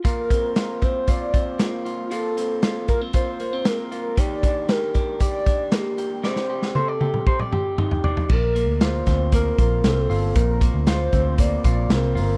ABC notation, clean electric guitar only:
X:1
M:4/4
L:1/16
Q:1/4=116
K:Bb
V:1 name="Clean electric guitar"
[B,,F]2 C2 F2 C2 F2 C2 B,2 F2 | [B,,F]2 C2 F2 B, C F2 B, C B,2 F2 | [E,G]2 D2 G2 D2 G2 D2 B,2 G2 | [C,d]2 G2 c d G2 c d G2 E2 d2 |
B,,2 B,2 F2 C2 B,2 F2 C2 F2 | B,,2 B,2 F2 C2 B,2 F2 C2 F2 |]